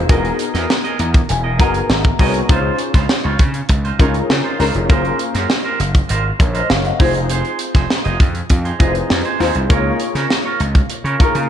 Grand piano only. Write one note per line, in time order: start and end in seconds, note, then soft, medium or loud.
0.00 0.12 C4 medium
0.00 0.09 D#4 medium
0.00 0.12 F4 medium
0.00 0.10 G#4 medium
0.00 0.11 C5 medium
0.09 1.20 B3 medium
0.09 1.20 D#4 medium
0.09 1.20 F#4 medium
0.09 1.20 G#4 medium
0.09 1.20 A#4 medium
1.00 1.28 A#5 medium
1.30 1.58 G#5 medium
1.59 2.14 B3 medium
1.59 2.14 D#4 medium
1.59 2.15 F#4 medium
1.59 2.15 G#4 medium
1.59 2.15 A#4 medium
1.59 1.87 F#5 medium
1.89 2.18 E5 medium
2.19 2.47 B3 medium
2.19 2.47 D#4 medium
2.19 2.47 F#4 medium
2.19 2.47 G#4 medium
2.19 2.47 C#5 medium
2.49 3.59 C#4 medium
2.49 3.60 D#4 medium
2.49 3.60 F4 medium
2.49 3.60 G#4 medium
2.49 3.60 C5 medium
3.99 4.54 C#4 medium
3.99 4.55 D#4 medium
3.99 4.55 F4 medium
3.99 4.55 G#4 medium
3.99 4.55 A#4 medium
4.59 4.87 C#4 medium
4.59 4.87 D#4 medium
4.59 4.87 F4 medium
4.59 4.87 G#4 medium
4.59 4.88 A#4 medium
4.89 6.00 A#3 medium
4.89 6.00 C#4 medium
4.89 6.00 F4 medium
4.89 6.00 G#4 medium
4.89 6.00 C5 medium
6.39 6.54 A#4 medium
6.39 6.54 C#5 medium
6.54 6.69 C5 medium
6.54 6.69 D#5 medium
6.70 6.84 C#5 medium
6.70 6.84 F5 medium
6.85 7.14 D#5 medium
6.85 7.13 F#5 medium
7.00 8.10 C4 medium
7.00 8.10 D#4 medium
7.00 8.10 F4 medium
7.00 8.11 G#4 medium
7.00 8.11 C5 loud
8.79 9.34 C4 medium
8.79 9.35 D#4 medium
8.79 9.35 F4 medium
8.79 9.35 G#4 medium
8.79 8.87 B4 medium
8.87 9.38 C5 medium
9.39 9.67 C4 medium
9.39 9.67 D#4 medium
9.39 9.67 F4 medium
9.39 9.67 G#4 medium
9.39 9.68 C5 medium
9.69 10.79 A#3 medium
9.69 10.80 D#4 medium
9.69 10.80 F4 medium
9.69 10.80 G#4 medium
9.69 10.80 C#5 loud
11.19 11.49 A#3 medium
11.19 11.49 D#4 medium
11.19 11.49 F4 medium
11.19 11.49 G#4 medium
11.19 11.49 A#4 loud